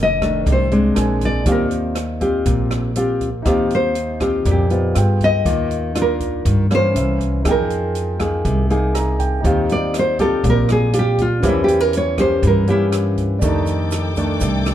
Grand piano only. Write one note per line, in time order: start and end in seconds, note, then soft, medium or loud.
0.00 0.93 A4 soft
0.00 0.95 A5 medium
0.00 0.94 D6 soft
0.94 1.45 D4 medium
0.94 1.46 A#4 soft
0.94 1.45 C5 medium
0.94 1.47 G#5 medium
1.43 3.40 D#4 soft
1.43 3.41 G4 medium
1.43 3.42 C5 medium
1.49 3.43 F5 medium
3.42 4.66 D#4 medium
3.42 4.67 G4 medium
3.42 4.68 C5 medium
3.48 4.69 F5 medium
4.69 4.95 D#4 soft
4.69 4.95 G4 soft
4.69 4.96 C5 soft
4.69 4.96 D#5 soft
4.94 5.45 F4 soft
4.94 5.45 G#4 soft
4.94 5.46 B4 soft
4.94 5.46 G5 medium
5.44 6.91 A#4 soft
5.44 6.92 D6 soft
5.48 6.93 F5 medium
6.94 7.44 C#4 medium
6.94 7.45 A#4 soft
6.94 7.45 C5 soft
6.94 7.46 E5 medium
7.42 9.39 D#4 medium
7.42 9.40 G#4 soft
7.46 9.41 A#4 soft
7.46 9.18 G5 medium
8.94 9.17 A#5 medium
9.19 9.42 G5 medium
9.40 11.37 D#4 medium
9.40 11.39 G4 medium
9.40 11.39 C5 medium
9.47 11.41 F5 medium
11.40 13.37 C#4 medium
11.40 13.37 A#4 soft
11.44 13.39 C5 soft
11.44 13.39 E5 medium
13.39 14.74 G4 medium
13.39 14.74 A4 medium
13.39 14.74 D5 medium
13.45 14.74 D#4 medium